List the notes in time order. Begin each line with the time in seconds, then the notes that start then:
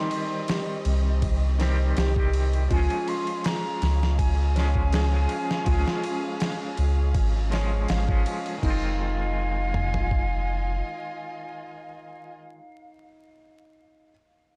Already playing: D#3 G3 C4 D#4 G4 C5 D#5 C6
0.11 ride
0.48 G4, snare, ride
0.85 C2, ride
1.22 kick, ride
1.59 D#3 G3 C4 G4 C5, snare, ride
1.97 C2 G4, snare, ride
2.15 D#3 G3 C4, kick
2.20 G4
2.33 ride
2.53 ride
2.68 C#2 F3 G#3 C#4 F4 G#4 F5, kick, ride
2.72 C#4 G#5
2.76 G#4
2.90 ride
3.08 C6, ride
3.27 ride
3.44 G#4 A#5, snare, ride
3.82 C#2, snare, ride
4.03 snare
4.18 G#5, kick, ride
4.55 F3 G#3 C#4 C#5, snare, ride
4.60 G#4
4.75 kick
4.93 G#4, snare, ride
5.12 F3 G#3 C#4
5.16 G#4
5.29 ride
5.51 snare
5.64 C#2 F3 G#3 F4, kick, ride
5.70 C#4 G#4
5.88 snare
6.04 ride
6.40 G#4, snare, ride
6.77 C#2, ride
7.15 G#1, kick, ride
7.51 F3 G#3 C#4 C#5, snare, ride
7.55 G#4
7.88 G#1 F5, snare, ride
8.08 G#1 F3 G#3 C#4, kick
8.12 G#4
8.26 G#5, ride
8.46 ride
8.58 D#3 G#3
8.63 F1 C4 D#4 F4 D#5 F5 G#5, kick, crash
8.70 F4
9.74 mid tom
9.94 floor tom
10.11 kick